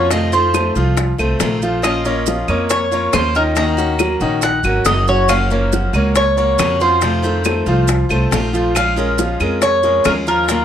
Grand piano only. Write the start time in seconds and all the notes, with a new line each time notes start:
0.10 F3 F4 F5
0.54 A3 A4 C5
0.76 F3 F4 F5
1.19 A3 A4 C5
1.63 F3 F4 F5
2.05 A#3 A#4 C#5
2.28 F3 F4 F5
2.49 A#3 A#4 C#5
2.93 A#3 A#4 C#5
3.36 D#3 D#4 D#5
3.57 D#3 D#4 D#5
4.00 F#3 F#4 A#4
4.22 D#3 D#4 D#5
4.65 F#3 F#4 A#4
5.08 F#3 F#4 F#5
5.51 A#3 A#4 C#5
5.72 F#3 F#4 F#5
5.95 A#3 A#4 C#5
6.37 A#3 A#4 C#5
6.81 F3 F4 F5
7.02 F3 F4 F5
7.46 A3 A4 C5
7.68 F3 F4 F5
8.11 A3 A4 C5
8.53 F3 F4 F5
8.97 G#3 G#4 A#4
9.19 F3 F4 F5
9.41 G#3 G#4 A#4
9.84 G#3 G#4 A#4
10.27 F3 F4 F5
10.50 F4 F5